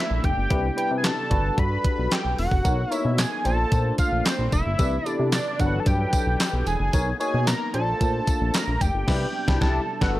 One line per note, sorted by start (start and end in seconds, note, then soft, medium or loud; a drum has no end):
0.00 0.49 A3 medium
0.00 0.48 A#3 medium
0.00 2.62 D4 medium
0.00 0.26 E5 loud
0.10 0.20 A#1 medium
0.24 0.34 F1 loud
0.24 0.78 G5 loud
0.24 kick loud
0.24 closed hi-hat medium
0.37 0.47 G1 medium
0.50 0.71 C2 loud
0.50 1.30 C3 medium
0.50 1.30 G3 medium
0.50 1.30 B3 medium
0.50 0.66 D4 medium
0.50 0.66 E4 medium
0.50 1.30 E4 medium
0.50 0.66 G4 medium
0.50 0.66 B4 medium
0.50 kick loud
0.50 closed hi-hat medium
0.77 1.08 D4 medium
0.77 1.08 E4 medium
0.77 1.08 G4 medium
0.77 1.08 B4 medium
0.77 0.96 G5 loud
0.77 closed hi-hat medium
0.91 1.11 C3 loud
0.98 1.06 G#5 medium
1.04 1.61 A5 loud
1.04 snare loud
1.04 clap loud
1.04 closed hi-hat loud
1.30 1.51 G1 loud
1.30 2.64 G3 medium
1.30 2.16 D4 medium
1.30 2.16 F#4 medium
1.30 2.64 F#4 medium
1.30 2.16 A4 medium
1.30 2.64 A4 medium
1.30 2.63 B4 medium
1.30 2.17 B4 medium
1.30 kick loud
1.30 closed hi-hat medium
1.58 1.78 G2 loud
1.58 2.14 B5 loud
1.58 kick loud
1.58 closed hi-hat medium
1.84 kick loud
1.84 closed hi-hat medium
1.98 2.08 B1 medium
2.11 2.38 G5 loud
2.11 snare loud
2.11 clap medium
2.11 closed hi-hat loud
2.25 2.35 B1 medium
2.38 2.48 E1 medium
2.38 2.94 F#5 loud
2.38 open hi-hat medium
2.51 2.62 F#1 medium
2.51 kick loud
2.64 2.85 B1 loud
2.64 4.77 A#3 medium
2.64 3.45 B3 medium
2.64 2.80 D#4 medium
2.64 3.45 D#4 medium
2.64 2.80 F#4 medium
2.64 2.80 A#4 medium
2.64 2.80 C#5 medium
2.64 kick loud
2.64 closed hi-hat medium
2.64 tambourine medium
2.91 3.22 D#4 medium
2.91 3.22 F#4 medium
2.91 3.23 A#4 medium
2.91 3.23 C#5 medium
2.91 3.20 E5 loud
2.91 closed hi-hat medium
2.91 tambourine medium
3.05 3.25 B2 loud
3.18 3.45 G#5 loud
3.18 snare loud
3.18 clap loud
3.18 closed hi-hat loud
3.18 tambourine medium
3.44 3.65 A#1 loud
3.44 4.77 A3 medium
3.44 4.30 D4 medium
3.44 4.77 D4 medium
3.44 4.31 F4 medium
3.44 4.31 A4 medium
3.44 4.31 C5 loud
3.44 3.95 A5 loud
3.44 closed hi-hat medium
3.44 tambourine soft
3.72 3.92 A#2 loud
3.72 kick loud
3.72 closed hi-hat medium
3.72 tambourine soft
3.98 4.27 F5 loud
3.98 kick loud
3.98 closed hi-hat medium
3.98 tambourine medium
4.12 4.22 A#1 medium
4.25 4.52 C5 loud
4.25 snare loud
4.25 clap medium
4.25 closed hi-hat loud
4.25 tambourine medium
4.39 4.49 A#1 medium
4.52 4.62 F1 loud
4.52 5.08 E5 loud
4.52 kick medium
4.52 closed hi-hat medium
4.52 tambourine medium
4.66 4.76 G1 loud
4.78 4.99 C2 loud
4.78 5.59 C3 medium
4.78 6.91 E3 medium
4.78 5.58 B3 medium
4.78 4.94 D4 medium
4.78 6.91 D4 medium
4.78 5.58 E4 medium
4.78 4.94 E4 medium
4.78 4.95 G4 medium
4.78 4.95 B4 medium
4.78 kick loud
4.78 closed hi-hat medium
4.78 tambourine medium
5.06 5.37 D4 medium
5.06 5.37 E4 medium
5.06 5.37 G4 medium
5.06 5.37 A4 medium
5.06 5.29 D5 loud
5.06 closed hi-hat medium
5.06 tambourine medium
5.20 5.40 C3 medium
5.32 5.62 D5 medium
5.32 snare loud
5.32 clap loud
5.32 closed hi-hat loud
5.32 tambourine medium
5.59 5.80 G1 loud
5.59 6.45 F#3 medium
5.59 6.92 F#3 medium
5.59 6.45 D4 medium
5.59 6.45 A4 medium
5.59 6.92 A4 medium
5.59 5.66 A#4 medium
5.59 6.92 B4 medium
5.59 5.81 F#5 loud
5.59 kick loud
5.59 closed hi-hat medium
5.59 tambourine soft
5.66 6.49 B4 medium
5.80 5.88 A5 medium
5.86 6.06 G2 loud
5.86 6.67 G5 loud
5.86 kick loud
5.86 closed hi-hat medium
5.86 tambourine soft
6.13 kick loud
6.13 closed hi-hat medium
6.13 tambourine medium
6.27 6.37 B1 medium
6.40 snare loud
6.40 clap loud
6.40 closed hi-hat loud
6.40 tambourine medium
6.53 6.63 B1 medium
6.66 6.77 E1 medium
6.66 7.17 G#5 loud
6.66 closed hi-hat medium
6.66 tambourine medium
6.80 6.90 F#1 medium
6.93 7.14 B1 loud
6.93 9.05 A#3 medium
6.93 7.73 B3 medium
6.93 7.09 D#4 medium
6.93 7.73 D#4 medium
6.93 7.09 F#4 medium
6.93 7.09 A#4 medium
6.93 7.09 C#5 medium
6.93 kick loud
6.93 closed hi-hat medium
6.93 tambourine medium
7.20 7.51 D#4 medium
7.20 7.51 F#4 medium
7.20 7.51 A#4 medium
7.20 7.51 C#5 medium
7.20 7.48 G#5 loud
7.20 closed hi-hat medium
7.20 tambourine medium
7.34 7.54 B2 loud
7.47 7.73 A#5 loud
7.47 snare loud
7.47 clap loud
7.47 closed hi-hat loud
7.47 tambourine medium
7.73 7.94 A#1 loud
7.73 9.07 A3 medium
7.73 7.80 C#4 medium
7.73 10.20 D4 medium
7.73 8.59 F4 medium
7.73 8.60 A4 medium
7.73 8.60 C5 medium
7.73 8.55 A5 loud
7.73 closed hi-hat medium
7.80 8.62 D4 medium
8.01 8.21 A#2 loud
8.01 kick loud
8.01 closed hi-hat medium
8.01 tambourine soft
8.27 kick loud
8.27 closed hi-hat medium
8.27 tambourine medium
8.41 8.51 A#1 medium
8.54 8.83 A#5 loud
8.54 snare loud
8.54 clap loud
8.54 closed hi-hat medium
8.54 tambourine medium
8.68 8.78 A#1 medium
8.81 8.91 F1 loud
8.81 9.63 G5 loud
8.81 kick loud
8.81 closed hi-hat medium
8.81 tambourine medium
8.95 9.05 G1 loud
9.07 9.26 C2 loud
9.07 9.87 C3 medium
9.07 10.20 G3 medium
9.07 9.87 B3 medium
9.07 9.26 D4 loud
9.07 9.26 E4 loud
9.07 9.87 E4 medium
9.07 9.26 G4 loud
9.07 9.26 B4 loud
9.07 kick loud
9.07 snare loud
9.07 crash medium
9.48 9.59 C2 loud
9.48 9.59 D4 loud
9.48 9.59 E4 loud
9.48 9.59 G4 loud
9.48 kick loud
9.48 snare loud
9.61 9.79 C2 loud
9.61 9.80 D4 loud
9.61 9.80 E4 loud
9.61 9.80 G4 loud
9.61 10.01 A5 loud
9.61 kick loud
9.61 snare loud
9.88 10.20 F#4 medium
9.88 10.20 A4 medium
9.88 10.20 B4 medium
10.01 10.20 G1 loud
10.01 10.19 D4 loud
10.01 10.20 F#4 loud
10.01 10.20 A4 loud
10.01 10.20 B4 loud
10.01 10.14 F#5 medium
10.01 kick loud
10.01 snare loud
10.15 10.20 B4 medium